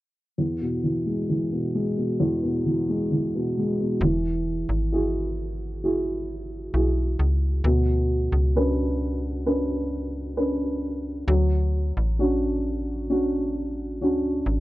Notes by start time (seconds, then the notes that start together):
0.38 E2
0.61 B2
0.84 E3
1.06 G#3
1.29 E3
1.52 B2
1.75 G#3
1.97 B2
2.20 E2
2.43 B2
2.66 E3
2.89 G#3
3.12 E3
3.35 B2
3.58 G#3
3.80 B2
4.01 E1 E3
4.69 G#1
4.92 E4 F#4 G#4
5.84 E4 F#4 G#4
6.74 B1 E4 F#4 G#4
7.19 C#2
7.64 D2 B2
8.32 C#2
8.56 C#4 D4 B4
9.46 C#4 D4 B4
10.37 C#4 D4 B4
11.27 D2 F#3
11.97 A1
12.19 C#4 D4 F#4
13.10 C#4 D4 F#4
14.01 C#2 C#4 D4 F#4
14.46 G#1